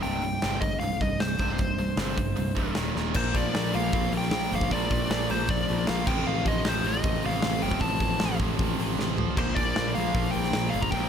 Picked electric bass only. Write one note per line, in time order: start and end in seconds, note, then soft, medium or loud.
0.04 0.35 C1 medium
0.44 0.59 G1 medium
0.61 0.78 G1 medium
0.81 0.97 C1 medium
1.01 1.17 C1 medium
1.20 1.36 C1 medium
1.39 1.55 C1 medium
1.59 1.91 C1 medium
1.97 2.14 G1 medium
2.17 2.33 G1 medium
2.36 2.53 C1 medium
2.57 2.73 C1 medium
2.76 2.92 D#1 medium
2.95 3.12 D#1 medium
3.15 3.32 A#1 medium
3.34 3.51 A#1 medium
3.54 3.71 A#1 medium
3.74 3.90 A#1 medium
3.93 4.10 A#1 medium
4.13 4.29 A#1 loud
4.32 4.49 A#1 medium
4.52 4.68 G1 medium
4.71 4.88 A#1 loud
4.91 5.07 A#1 medium
5.09 5.26 A#1 loud
5.30 5.46 A#1 loud
5.49 5.65 A#1 loud
5.70 5.86 A#1 loud
5.88 6.05 A#1 medium
6.07 6.23 A1 loud
6.27 6.43 A1 loud
6.45 6.62 A1 medium
6.65 6.82 A1 loud
6.83 7.00 A1 loud
7.04 7.21 A1 medium
7.25 7.40 A1 medium
7.45 7.60 A1 medium
7.63 7.79 G1 medium
7.81 7.98 A1 medium
8.00 8.17 A1 medium
8.22 8.38 A1 loud
8.40 8.56 A1 medium
8.59 8.75 A1 medium
8.79 8.95 A1 medium
8.98 9.30 A1 medium
9.38 9.54 A#1 medium
9.57 9.73 A#1 medium
9.78 9.93 A#1 medium
9.97 10.12 A#1 medium
10.14 10.31 A#1 medium
10.36 10.51 A#1 medium
10.55 10.70 A#1 medium
10.74 10.90 G1 medium
10.92 11.08 A#1 loud